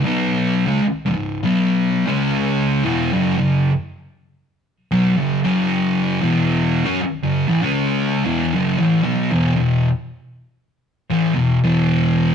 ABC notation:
X:1
M:4/4
L:1/16
Q:"Swing" 1/4=78
K:F#dor
V:1 name="Distorted electric guitar" clef=bass
[B,,F,B,]3 [C,G,] z [C,,G,,]2 [B,,F,B,]3 [C,G,C]4 [E,,B,,E,]2 | [F,,C,] [F,,C,]2 z6 [B,,F,] [F,,C,]2 [F,,C,F,]4 | [E,,B,,E,]3 [F,C] z [F,,C,] [A,,E,] [C,G,C]3 [E,,B,,E,]2 [F,,C,] [A,,E,] [B,,F,B,]2 | [E,,B,,] [E,,B,,]2 z6 [A,,E,] [E,,B,,]2 [E,,B,,E,]4 |]